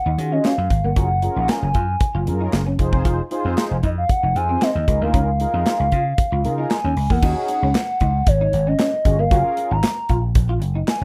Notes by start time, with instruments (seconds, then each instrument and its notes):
Already playing: soft synth lead F#5
0.06 slap bass D#2, clean electric guitar D#4
0.18 slap bass D#3, analog polysynth C#4 F4 F#4 G#4, muted clean electric guitar stroke, closed hi-hat
0.32 clean electric guitar C#4, soft synth lead D#5
0.44 clean electric guitar C#4, soft synth lead F5, snare, clap, closed hi-hat
0.58 slap bass F#2, muted clean electric guitar stroke
0.70 slap bass G#1, kick, closed hi-hat
0.84 slap bass G1, clean electric guitar A#3, soft synth lead F#5
0.96 slap bass F#1, analog polysynth C#4 F4 G#4 A#4, clean electric guitar F#4, kick, closed hi-hat
1.22 analog polysynth C#4 F4 G#4 A#4, muted clean electric guitar stroke, closed hi-hat
1.36 slap bass A#1, clean electric guitar D#4, soft synth lead F#5
1.49 soft synth lead G#5, snare, clap, closed hi-hat
1.62 slap bass F#1
1.74 slap bass F#2, clean electric guitar F4, kick, closed hi-hat
2.00 kick, closed hi-hat
2.15 slap bass F#1, clean electric guitar F4
2.26 slap bass F#2, analog polysynth C#4 F4 G#4 A#4, muted clean electric guitar stroke, closed hi-hat
2.41 clean electric guitar D#4
2.53 slap bass F#1, snare, clap, closed hi-hat
2.67 clean electric guitar C#4
2.79 slap bass F1, analog polysynth D#4 F4 G#4 C5, muted clean electric guitar stroke, kick, closed hi-hat
2.93 clean electric guitar C4, kick
3.05 clean electric guitar F4, kick, closed hi-hat
3.31 analog polysynth D#4 F4 G#4 C5, muted clean electric guitar stroke, closed hi-hat
3.45 slap bass F2, clean electric guitar C4
3.57 snare, clap, closed hi-hat
3.71 slap bass F1
3.83 slap bass F2, clean electric guitar D#4, soft synth lead D#5, kick, closed hi-hat
3.98 soft synth lead F5
4.09 soft synth lead F#5, kick, closed hi-hat
4.23 slap bass F1, clean electric guitar D#4
4.35 slap bass F2, analog polysynth D#4 F4 G#4 C5, soft synth lead G#5, muted clean electric guitar stroke, closed hi-hat
4.49 clean electric guitar C4
4.61 clean electric guitar C4, soft synth lead D#5, snare, clap, closed hi-hat
4.75 slap bass D#2, muted clean electric guitar stroke
4.87 slap bass C#2, analog polysynth D#4 F4 G#4 A#4, kick, closed hi-hat
5.01 slap bass D2, clean electric guitar A#3, soft synth lead F5
5.14 slap bass C#2, clean electric guitar C#4, kick, closed hi-hat
5.39 analog polysynth D#4 F4 G#4 A#4, muted clean electric guitar stroke, closed hi-hat
5.54 slap bass F2, clean electric guitar D#4
5.66 snare, clap, closed hi-hat
5.80 slap bass C#2
5.92 slap bass C#3, clean electric guitar F4, kick, closed hi-hat
6.18 kick, closed hi-hat
6.32 slap bass C#2, clean electric guitar F4
6.44 slap bass C#3, analog polysynth D#4 F4 G#4 A#4, muted clean electric guitar stroke, closed hi-hat
6.58 clean electric guitar D#4
6.70 soft synth lead G#5, snare, clap, closed hi-hat
6.84 slap bass D#2, clean electric guitar C#4
6.97 slap bass C#2, muted clean electric guitar stroke, open hi-hat
7.10 slap bass E2, clean electric guitar A#3, soft synth lead F#5, kick
7.22 slap bass D#2, analog polysynth C#4 D#4 F#4 G#4, clean electric guitar D#4, kick, crash
7.48 muted clean electric guitar stroke, closed hi-hat
7.63 slap bass C#2, clean electric guitar C#4
7.75 snare, clap, closed hi-hat
8.00 slap bass C#2, clean electric guitar D#4, kick, closed hi-hat
8.27 slap bass G#1, soft synth lead C#5, kick, closed hi-hat
8.41 clean electric guitar D#4
8.53 slap bass G#1, muted clean electric guitar stroke, closed hi-hat
8.67 clean electric guitar C#4, soft synth lead D#5
8.79 clean electric guitar C#4, snare, clap, closed hi-hat
8.93 muted clean electric guitar stroke
9.05 slap bass G1, analog polysynth C#4 F4 F#4 G#4, kick, closed hi-hat
9.19 clean electric guitar A#3, soft synth lead F5
9.30 slap bass F#1, analog polysynth C#4 F4 G#4 A#4, clean electric guitar F#4, kick, closed hi-hat
9.57 muted clean electric guitar stroke, closed hi-hat
9.71 slap bass G#1, clean electric guitar D#4, soft synth lead A#5
9.83 snare, clap, closed hi-hat
10.09 slap bass A#1, clean electric guitar F4, kick, closed hi-hat
10.35 slap bass A#1, kick, closed hi-hat
10.49 clean electric guitar F4
10.62 slap bass F#1, muted clean electric guitar stroke, closed hi-hat
10.75 clean electric guitar D#4
10.87 soft synth lead G#5, snare, clap, closed hi-hat